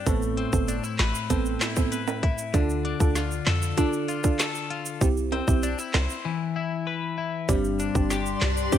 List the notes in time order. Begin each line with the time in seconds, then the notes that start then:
Already playing: C4 D4 G4
0.06 A1 A2 B3 C4 A4, kick, closed hi-hat, shaker
0.22 shaker
0.37 C4, closed hi-hat
0.53 G1 B3 C4 A4, kick, shaker
0.68 D4, closed hi-hat, shaker
0.84 E4, shaker
0.99 A1 B4, snare, clap, closed hi-hat
1.15 shaker
1.30 A1 B3 C4 A4, kick, closed hi-hat, shaker
1.45 shaker
1.61 E4, snare, clap, closed hi-hat, shaker
1.76 B3 C4 A4, kick, shaker
1.92 B4, closed hi-hat, shaker
2.08 high timbale, shaker
2.23 E4, kick, closed hi-hat
2.38 shaker
2.54 D2 D3 D4 F4 A4, kick, closed hi-hat, shaker
2.70 shaker
2.85 D4, closed hi-hat
3.00 D2 D4 F4 A4, kick, shaker
3.15 F4, snare, closed hi-hat, shaker
3.31 shaker
3.46 F2 A4, snare, clap, closed hi-hat
3.62 shaker
3.77 D4 F4 A4, kick, closed hi-hat, shaker
3.93 shaker
4.08 F4, closed hi-hat, shaker
4.24 D4 F4 A4, kick, shaker
4.39 A4, snare, clap, closed hi-hat, shaker
4.55 shaker
4.70 F4, closed hi-hat
4.86 shaker
5.01 C2 C4 E4 G4, kick, closed hi-hat, shaker
5.17 shaker
5.32 C4, closed hi-hat, high timbale
5.47 B1 C4 E4 G4, kick, shaker
5.63 D4, closed hi-hat, shaker
5.79 E4, shaker
5.94 C2 C5, snare, clap, closed hi-hat, high timbale
6.10 shaker
6.25 E3
6.56 E4
6.87 B4
7.18 E4
7.48 G1 G2 C4 D4 G4 D5 C6, kick, closed hi-hat, shaker
7.64 shaker
7.79 D4, closed hi-hat, shaker
7.95 G1 C4 D4 G4, kick, shaker
8.10 G4, snare, closed hi-hat, shaker
8.26 shaker
8.41 C2 D4, snare, clap, closed hi-hat
8.57 shaker
8.72 C4 D4 G4, kick, closed hi-hat, shaker